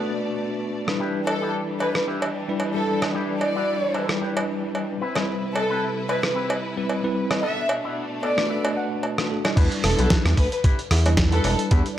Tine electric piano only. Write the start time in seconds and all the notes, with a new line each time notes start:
Already playing: A3 D4 F#4 B4
0.87 G3 D4 E4 B4
2.48 G3 D4 E4 B4
2.74 G3 D4 E4 B4
4.08 G3 D4 E4 B4
5.15 G3 C4 E4 B4
6.76 G3 C4 E4 B4
7.03 G3 C4 E4 B4
8.37 A3 D4 F#4 B4
9.18 A3 D4 F#4 B4
9.30 A3 D4 F#4 A4
9.45 G3 D4 E4 D5
9.56 G3 D4 E4 B4
11.06 G3 D4 E4 B4
11.31 G3 D4 E4 B4